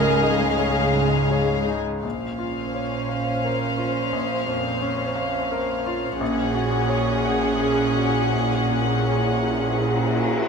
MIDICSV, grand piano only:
0, 0, Header, 1, 2, 480
1, 0, Start_track
1, 0, Key_signature, -5, "minor"
1, 0, Tempo, 730816
1, 1342, Time_signature, 3, 2, 24, 8
1, 1808, Tempo, 692042
1, 5168, Tempo, 738007
1, 7046, End_track
2, 0, Start_track
2, 0, Title_t, "Grand piano"
2, 0, Program_c, 0, 0
2, 0, Note_on_c, 0, 37, 46
2, 32, Control_c, 0, 64, 127
2, 132, Note_on_c, 0, 63, 36
2, 379, Note_on_c, 0, 68, 35
2, 382, Note_on_c, 0, 73, 37
2, 523, Note_off_c, 0, 63, 0
2, 597, Note_off_c, 0, 68, 0
2, 598, Note_off_c, 0, 73, 0
2, 615, Note_on_c, 0, 44, 35
2, 859, Note_on_c, 0, 68, 32
2, 863, Note_on_c, 0, 73, 34
2, 1003, Note_off_c, 0, 44, 0
2, 1078, Note_off_c, 0, 68, 0
2, 1080, Note_off_c, 0, 73, 0
2, 1096, Note_on_c, 0, 63, 36
2, 1317, Note_off_c, 0, 37, 0
2, 1332, Note_on_c, 0, 34, 33
2, 1338, Note_off_c, 0, 63, 0
2, 1354, Control_c, 0, 64, 0
2, 1473, Control_c, 0, 64, 127
2, 1567, Note_on_c, 0, 65, 25
2, 1801, Note_on_c, 0, 61, 33
2, 1950, Note_off_c, 0, 65, 0
2, 2041, Note_on_c, 0, 77, 34
2, 2195, Note_off_c, 0, 61, 0
2, 2290, Note_on_c, 0, 70, 34
2, 2435, Note_off_c, 0, 77, 0
2, 2520, Note_on_c, 0, 65, 33
2, 2675, Note_off_c, 0, 70, 0
2, 2740, Note_off_c, 0, 34, 0
2, 2760, Note_on_c, 0, 34, 43
2, 2785, Control_c, 0, 64, 0
2, 2906, Note_off_c, 0, 65, 0
2, 2913, Control_c, 0, 64, 127
2, 2993, Note_on_c, 0, 41, 35
2, 3241, Note_on_c, 0, 61, 41
2, 3381, Note_off_c, 0, 41, 0
2, 3476, Note_on_c, 0, 77, 44
2, 3625, Note_off_c, 0, 61, 0
2, 3726, Note_on_c, 0, 70, 40
2, 3864, Note_off_c, 0, 77, 0
2, 3966, Note_on_c, 0, 65, 44
2, 4109, Note_off_c, 0, 70, 0
2, 4170, Note_off_c, 0, 34, 0
2, 4202, Note_on_c, 0, 34, 52
2, 4204, Note_off_c, 0, 65, 0
2, 4217, Control_c, 0, 64, 0
2, 4310, Control_c, 0, 64, 127
2, 4440, Note_on_c, 0, 66, 42
2, 4677, Note_on_c, 0, 73, 46
2, 4825, Note_off_c, 0, 66, 0
2, 4925, Note_on_c, 0, 78, 43
2, 5069, Note_off_c, 0, 73, 0
2, 5165, Note_on_c, 0, 68, 37
2, 5311, Note_off_c, 0, 78, 0
2, 5402, Note_on_c, 0, 66, 33
2, 5545, Note_off_c, 0, 68, 0
2, 5617, Note_off_c, 0, 34, 0
2, 5644, Note_on_c, 0, 34, 37
2, 5658, Control_c, 0, 64, 0
2, 5754, Control_c, 0, 64, 127
2, 5787, Note_off_c, 0, 66, 0
2, 5882, Note_on_c, 0, 46, 29
2, 6129, Note_on_c, 0, 73, 33
2, 6269, Note_off_c, 0, 46, 0
2, 6365, Note_on_c, 0, 78, 29
2, 6513, Note_off_c, 0, 73, 0
2, 6613, Note_on_c, 0, 68, 27
2, 6752, Note_off_c, 0, 78, 0
2, 6858, Note_on_c, 0, 66, 28
2, 6997, Note_off_c, 0, 68, 0
2, 7046, Note_off_c, 0, 34, 0
2, 7046, Note_off_c, 0, 66, 0
2, 7046, End_track
0, 0, End_of_file